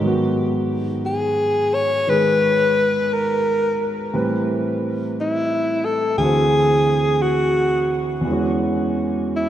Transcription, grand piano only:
0.00 4.10 G#2 soft
0.00 2.06 D#3 soft
0.00 4.13 F#3 soft
0.00 0.25 D#5 soft
0.05 4.14 B3 soft
0.05 4.15 F#4 soft
2.07 4.13 D#3 soft
2.07 4.13 G#3 soft
2.07 4.14 G#4 soft
4.13 6.19 A2 soft
4.13 6.19 E3 soft
4.13 6.19 G3 soft
4.13 6.19 C4 soft
4.13 6.20 B4 soft
6.18 8.25 D2 soft
6.18 8.25 D3 soft
6.18 8.23 E3 soft
6.22 8.27 C4 soft
6.22 8.28 F#4 soft
8.21 9.49 E2 soft
8.21 9.49 E3 soft
8.26 9.49 G#3 soft
8.26 9.49 C#4 soft
8.33 9.49 F#4 medium

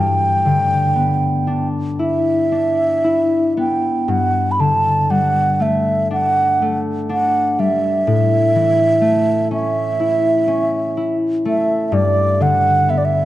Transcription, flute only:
0.00 1.68 G5 medium
2.01 3.54 E5 medium
3.59 4.12 G5 medium
4.10 4.53 F#5 medium
4.51 4.62 B5 soft
4.60 5.12 A5 medium
5.11 5.63 F#5 medium
5.62 6.12 E5 medium
6.12 6.80 F#5 medium
7.10 7.61 F#5 medium
7.60 9.52 E5 medium
9.53 11.17 E5 medium
11.47 11.88 E5 medium
11.88 11.95 E5 medium
11.94 12.44 D5 medium
12.42 12.92 F#5 medium
12.90 12.99 E5 medium
12.98 13.06 D5 medium
13.05 13.25 E5 medium

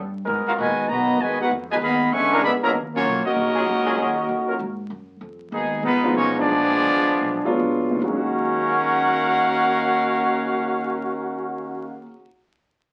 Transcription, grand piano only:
6.04 6.46 F3 medium
6.04 6.46 G#3 medium
6.04 6.47 B3 medium
6.04 6.47 D#4 medium
6.04 6.47 F4 medium
7.45 7.99 F#3 medium
7.45 7.99 G#3 medium
7.45 7.99 B3 medium
7.45 7.99 D4 medium
7.45 7.99 F4 medium
7.91 12.00 D#2 medium
7.95 12.05 D#3 medium
8.01 12.10 F#3 medium
8.06 12.15 G#3 medium
8.11 12.21 C#4 medium
8.16 12.25 F#4 medium

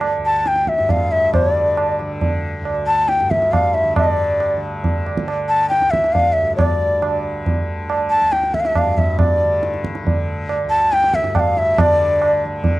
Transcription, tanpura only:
0.00 0.16 D2 soft
0.00 0.78 G2 soft
0.00 1.40 D3 medium
0.17 2.60 D2 medium
0.79 3.20 G2 medium
1.40 2.00 D3 medium
2.00 3.84 D3 medium
2.60 5.80 D2 medium
3.20 3.96 G2 medium
3.84 4.57 D3 medium
3.96 6.42 G2 soft
4.57 5.17 D3 medium
5.17 7.01 D3 medium
5.80 8.20 D2 medium
6.42 8.82 G2 medium
7.01 7.62 D3 medium
7.62 9.43 D3 medium
8.21 10.63 D2 medium
8.83 11.22 G2 medium
9.43 10.03 D3 medium
10.03 11.85 D3 medium
10.64 12.80 D2 medium
11.22 12.80 G2 medium
11.85 12.45 D3 medium
12.45 12.80 D3 medium

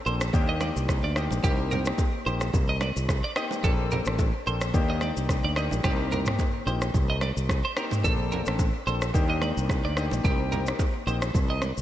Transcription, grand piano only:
0.06 0.24 A#3 medium
0.06 0.24 C4 medium
0.06 0.24 D4 medium
0.06 0.24 A4 medium
0.33 1.10 A#3 medium
0.33 1.10 D4 medium
0.33 1.10 D#4 medium
0.33 1.10 G4 loud
1.16 1.41 A#3 medium
1.16 1.42 D4 medium
1.16 1.42 D#4 medium
1.16 1.42 G4 medium
1.43 1.83 A#3 medium
1.43 1.83 C4 medium
1.43 1.83 D#4 medium
1.43 1.83 G4 loud
1.86 2.02 A#3 medium
1.86 2.02 C4 medium
1.86 2.02 D#4 medium
1.86 2.02 G4 medium
2.26 2.44 A#3 medium
2.26 2.44 C4 medium
2.26 2.44 D#4 medium
2.26 2.44 G4 medium
3.36 3.62 A#3 medium
3.36 3.62 C4 medium
3.36 3.62 D#4 medium
3.36 3.62 G4 medium
3.64 4.03 A#3 medium
3.64 4.03 C4 medium
3.64 4.03 D4 medium
3.64 4.03 A4 loud
4.06 4.22 A#3 medium
4.06 4.22 C4 medium
4.06 4.22 D4 medium
4.06 4.22 A4 medium
4.46 4.64 A#3 medium
4.46 4.64 C4 medium
4.46 4.65 D4 medium
4.46 4.65 A4 medium
4.74 5.50 A#3 medium
4.74 5.51 D4 medium
4.74 5.51 D#4 medium
4.74 5.51 G4 loud
5.56 5.82 A#3 medium
5.56 5.82 D4 medium
5.56 5.82 D#4 medium
5.56 5.82 G4 medium
5.84 6.23 A#3 medium
5.84 6.23 C4 medium
5.84 6.23 D#4 medium
5.84 6.23 G4 loud
6.27 6.42 A#3 medium
6.27 6.43 C4 medium
6.27 6.43 D#4 medium
6.27 6.43 G4 medium
6.67 6.85 A#3 medium
6.67 6.85 C4 medium
6.67 6.85 D#4 medium
6.67 6.85 G4 medium
7.77 8.02 A#3 medium
7.77 8.02 C4 medium
7.77 8.02 D#4 medium
7.77 8.02 G4 medium
8.04 8.43 A#3 medium
8.04 8.43 C4 medium
8.04 8.43 D4 medium
8.04 8.43 A4 loud
8.47 8.63 A#3 medium
8.47 8.63 C4 medium
8.47 8.63 D4 medium
8.47 8.63 A4 medium
8.87 9.05 A#3 medium
8.87 9.05 C4 medium
8.87 9.05 D4 medium
8.87 9.05 A4 medium
9.14 9.91 A#3 loud
9.14 9.91 D4 medium
9.14 9.91 D#4 medium
9.14 9.91 G4 loud
9.97 10.22 A#3 medium
9.97 10.22 D4 medium
9.97 10.22 D#4 medium
9.97 10.23 G4 medium
10.24 10.63 A#3 medium
10.24 10.64 C4 medium
10.24 10.64 D#4 medium
10.24 10.64 G4 loud
10.67 10.83 A#3 medium
10.67 10.83 C4 medium
10.67 10.83 D#4 medium
10.67 10.83 G4 medium
11.07 11.25 A#3 medium
11.07 11.25 C4 medium
11.07 11.25 D#4 medium
11.07 11.25 G4 medium

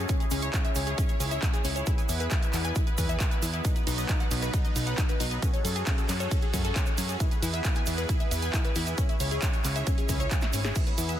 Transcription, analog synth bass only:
0.31 0.50 C#2 loud
0.76 0.94 C#2 loud
1.20 1.39 C#2 medium
1.65 1.83 C#2 medium
2.09 2.28 E2 loud
2.53 2.72 E2 loud
2.98 3.17 E2 medium
3.42 3.61 E2 medium
3.87 4.06 B1 loud
4.31 4.50 B1 loud
4.76 4.94 B1 loud
5.20 5.39 B1 medium
5.65 5.83 F#2 loud
6.09 6.28 F#2 loud
6.54 6.72 F#2 loud
6.98 7.17 F#2 medium
7.42 7.61 E2 loud
7.87 8.06 E2 loud
8.31 8.50 E2 medium
8.76 8.94 E2 medium
9.20 9.39 C#2 loud
9.65 9.83 C#2 loud
10.09 10.28 C#2 loud
10.54 10.72 G#1 loud
10.98 11.17 E2 loud

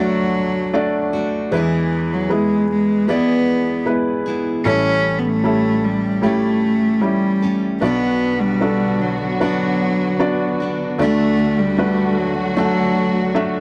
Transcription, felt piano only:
0.00 1.49 D2 soft
0.00 1.49 D3 soft
0.00 0.73 A3 medium
0.00 0.74 D4 medium
0.00 0.74 F#4 medium
0.00 1.54 A4 medium
0.00 0.75 D5 medium
0.73 1.48 A3 medium
0.73 1.48 D4 medium
0.73 1.48 F#4 medium
0.73 1.49 D5 medium
1.51 4.62 E2 medium
1.51 4.62 E3 soft
1.51 2.26 G#3 medium
1.51 2.26 B3 medium
1.51 2.27 E4 medium
1.51 2.27 B4 medium
2.29 3.04 G#3 medium
2.29 3.05 B3 medium
2.29 3.05 E4 soft
2.29 3.05 G#4 medium
3.08 3.83 G#3 medium
3.08 3.83 B3 medium
3.08 3.84 E4 medium
3.08 3.84 D5 medium
3.86 4.61 G#3 medium
3.86 4.61 B3 medium
3.86 4.62 E4 medium
3.86 4.62 B4 medium
4.65 7.78 A1 soft
4.65 7.78 A2 soft
4.65 5.40 G3 medium
4.65 5.41 C#4 medium
4.65 5.41 E4 medium
4.65 5.41 A4 medium
5.44 6.19 G3 medium
5.44 6.19 C#4 medium
5.44 6.20 E4 soft
5.44 6.20 A4 medium
6.22 6.98 G3 medium
6.22 6.98 C#4 medium
6.22 6.99 E4 soft
6.22 6.99 G4 medium
7.01 7.78 G3 medium
7.01 7.78 C#4 soft
7.01 7.78 E4 soft
7.01 7.79 G4 medium
7.81 10.96 B1 soft
7.81 10.96 B2 soft
7.81 8.57 B3 medium
7.81 8.58 D4 soft
7.81 8.58 F#4 soft
7.81 8.58 D5 medium
8.61 9.37 B3 medium
8.61 9.37 D4 soft
8.61 9.37 F#4 soft
8.61 9.38 A4 medium
9.40 10.16 B3 medium
9.40 10.16 D4 medium
9.40 10.16 F#4 medium
9.40 10.17 D5 medium
10.19 10.95 B3 medium
10.19 10.95 D4 medium
10.19 10.96 F#4 medium
10.19 10.96 D5 medium
10.98 13.60 D2 soft
10.98 13.60 D3 soft
10.98 11.74 A3 medium
10.98 11.74 D4 medium
10.98 11.75 F#4 medium
10.98 11.75 D5 medium
11.78 12.53 A3 medium
11.78 12.53 D4 medium
11.78 12.53 F#4 medium
11.78 12.54 B4 medium
12.56 13.31 A3 medium
12.56 13.31 D4 medium
12.56 13.32 F#4 medium
12.56 13.32 A4 medium
13.35 13.60 A3 medium
13.35 13.60 D4 medium
13.35 13.60 F#4 medium
13.35 13.60 E5 medium

